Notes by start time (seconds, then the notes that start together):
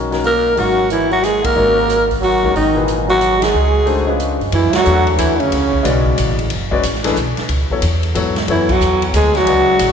Already playing: B1 C#4 F#4 A#4
0.11 D#3 G#3 C#4 F#4 A#4, snare, open hi-hat
0.24 A#3 A#4, open hi-hat
0.56 G#1 D#3 F#3 G#3 C#4 F#4 A#4, open hi-hat
0.90 E3 E4, closed hi-hat
1.11 F#3 F#4, open hi-hat
1.22 G#3 G#4, snare, closed hi-hat
1.43 A#3 A#4, kick, ride
1.56 G#1 D#3 G#3 C#4 F#4 A#4
1.90 closed hi-hat
2.11 kick, open hi-hat
2.20 F#3 F#4, open hi-hat
2.42 D#3 G#3 C#4 F#4 A#4, kick
2.54 G#1 D#3 D#4, open hi-hat
2.75 A#2 E3 D#4 G#4 B4
2.88 closed hi-hat
3.07 F#3 F#4, open hi-hat
3.21 closed hi-hat
3.40 G#3 G#4, snare, ride
3.54 C#2
3.86 A3 D4 D#4 F#4 C5, open hi-hat
4.07 G#3 C#4 D4 F4 B4
4.20 closed hi-hat
4.41 G2, open hi-hat
4.52 F#2 E3 E4, ride
4.73 F#3 F#4, muted upright bass stroke, snare, ride
4.84 E2 A3 D4 G#4 C#5 E5, hi-hat pedal
5.07 ride
5.17 D2 E3 E4, hi-hat pedal, ride
5.38 C#3 C#4, ride
5.52 C#2, ride
5.73 kick
5.83 B1 C#3 G#3 F#4 B4 D5, hi-hat pedal, ride
6.06 kick
6.18 A1, hi-hat pedal, ride
6.39 ride
6.50 F#1, ride
6.71 G#3 C#4 F#4 B4 D5, kick
6.83 A1, hi-hat pedal, ride
6.95 snare
7.04 E3 A3 D4 G#4 B4, snare, ride
7.16 B1, hi-hat pedal
7.37 muted upright bass stroke, snare, ride
7.49 C#2, ride
7.70 F#3 B3 E4 A4 C#5, muted upright bass stroke, kick
7.82 E2, hi-hat pedal, ride
8.03 ride
8.15 G#2 F#3 B3 E4 A4 C#5, hi-hat pedal, ride
8.36 snare, ride
8.48 F#2 E3 F#3 B3 E4 A4 C#5, ride
8.69 F#3 F#4, kick, crash
8.81 E2, hi-hat pedal
9.02 ride
9.13 D2 G#3 G#4, hi-hat pedal, ride
9.35 F#3 F#4, snare, ride
9.46 C#2 C#3 G#3 F#4 B4 D5, ride
9.68 muted upright bass stroke
9.79 A1, hi-hat pedal, ride